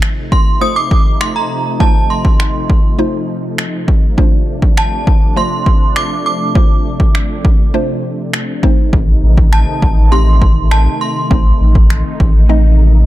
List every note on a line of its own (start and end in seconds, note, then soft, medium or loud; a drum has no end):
0.00 4.14 C3 medium
0.00 8.59 F3 medium
0.00 0.32 A3 medium
0.00 4.14 A3 medium
0.00 0.33 D#4 medium
0.00 4.14 D#4 medium
0.00 0.33 F4 medium
0.00 0.33 C5 loud
0.00 finger snap loud
0.32 0.62 C6 medium
0.32 kick medium
0.61 1.51 A3 medium
0.61 1.51 D#4 medium
0.61 1.51 F4 medium
0.61 1.52 C5 medium
0.61 0.77 D#6 loud
0.76 1.18 D6 loud
0.91 kick medium
1.21 1.35 C6 medium
1.21 finger snap loud
1.36 1.82 A#5 medium
1.80 2.70 A3 medium
1.80 2.70 D#4 medium
1.80 2.70 F4 medium
1.80 2.70 C5 medium
1.80 2.11 A5 medium
1.80 kick loud
2.10 3.25 C6 medium
2.25 kick medium
2.40 finger snap loud
2.70 kick medium
2.99 3.89 A3 medium
2.99 3.89 D#4 medium
2.99 3.89 F4 medium
2.99 3.89 C5 loud
3.58 finger snap loud
3.88 kick medium
4.18 13.06 C3 medium
4.18 5.08 A3 medium
4.18 8.59 A3 medium
4.18 5.08 D4 medium
4.18 8.60 D4 medium
4.18 5.08 F4 medium
4.18 5.08 C5 medium
4.18 kick loud
4.62 kick medium
4.77 5.39 A5 medium
4.77 finger snap loud
5.07 kick loud
5.36 6.27 A3 medium
5.36 6.27 D4 medium
5.36 6.27 F4 medium
5.36 6.27 C5 medium
5.36 5.98 C6 loud
5.66 kick medium
5.96 6.09 D6 loud
5.96 finger snap loud
6.26 7.41 D6 loud
6.55 7.45 A3 medium
6.55 7.45 D4 medium
6.55 7.46 F4 medium
6.55 7.46 C5 medium
6.55 kick loud
7.00 kick medium
7.15 finger snap loud
7.45 kick loud
7.74 8.62 A3 medium
7.74 8.63 D4 medium
7.74 8.63 F4 medium
7.74 8.62 C5 loud
8.34 finger snap loud
8.63 13.06 D#3 medium
8.63 9.58 A3 loud
8.63 13.06 A3 medium
8.63 9.58 C4 medium
8.63 10.99 D#4 loud
8.63 9.58 D#4 medium
8.63 9.59 C5 loud
8.63 kick medium
8.93 9.14 A1 loud
8.93 kick loud
9.23 9.65 A1 medium
9.38 kick medium
9.53 10.14 A5 loud
9.53 finger snap loud
9.82 10.88 A1 medium
9.82 kick medium
10.11 11.02 A3 medium
10.11 11.02 C4 medium
10.11 11.02 D#4 medium
10.11 11.02 G4 medium
10.11 10.67 C6 loud
10.42 kick medium
10.71 10.85 A5 medium
10.71 finger snap loud
11.01 13.06 D#4 medium
11.01 12.16 C6 medium
11.30 11.52 A1 loud
11.30 12.21 A3 medium
11.30 12.21 C4 medium
11.30 12.21 D#4 medium
11.30 12.21 C5 medium
11.30 kick loud
11.61 12.03 A1 loud
11.75 kick medium
11.90 finger snap loud
12.20 13.06 A1 medium
12.20 kick loud
12.49 13.06 A3 medium
12.49 13.06 C4 medium
12.49 13.06 D#4 medium
12.49 13.06 D#5 loud